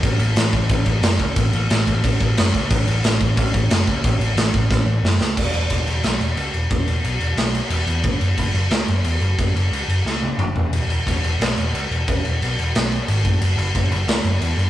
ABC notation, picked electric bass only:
X:1
M:4/4
L:1/8
Q:1/4=179
K:E
V:1 name="Picked electric bass" clef=bass
A,,, A,,, A,,, A,,, A,,, A,,, F,,, C,, | A,,, A,,, A,,, A,,, A,,, A,,, F,,, C,, | A,,, A,,, A,,, A,,, A,,, A,,, F,,, C,, | A,,, A,,, A,,, A,,, A,,, A,,, F,,, C,, |
E,,, E,,, E,,, E,,, B,,, E,,, C,, E,,, | E,,, E,,, B,,, E,,, B,,,2 E,,, E,, | F,,, F,,, F,,, F,,, C,, F,,, E,, F,,, | F,,, F,,, C,, F,,, C,,2 F,,, E,,, |
E,,, E,,, E,,, E,,, B,,, E,,, C,, E,,, | E,,, E,,, B,,, E,,, B,,,2 G,,, F,,, | F,,, F,,, F,,, F,,, C,, F,,, E,, F,,, |]